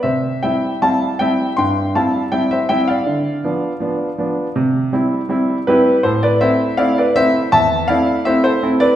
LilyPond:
\new Staff \with { instrumentName = "Grand piano" } { \time 4/4 \key c \major \tempo 4 = 80 << { <c'' e''>8 <e'' g''>8 <f'' a''>8 <e'' g''>8 <g'' c'''>8 <f'' a''>8 <e'' g''>16 <c'' e''>16 <e'' g''>16 <d'' f''>16~ | <d'' f''>2.~ <d'' f''>8 <g' b'>8 | <a' c''>16 <b' d''>16 <c'' e''>8 <d'' f''>16 <b' d''>16 <c'' e''>8 <e'' a''>8 <d'' f''>8 <c'' e''>16 <a' c''>8 <b' d''>16 | } \\ { c8 <g c' e'>8 <g c' e'>8 <g c' e'>8 g,8 <g c' e'>8 <g c' e'>8 <g c' e'>8 | d8 <f b d'>8 <f b d'>8 <f b d'>8 c8 <g c' e'>8 <g c' e'>8 <g c' e'>8 | a,8 <a c' e'>8 <a c' e'>8 <a c' e'>8 e,8 <a c' e'>8 <a c' e'>8 <a c' e'>8 | } >> }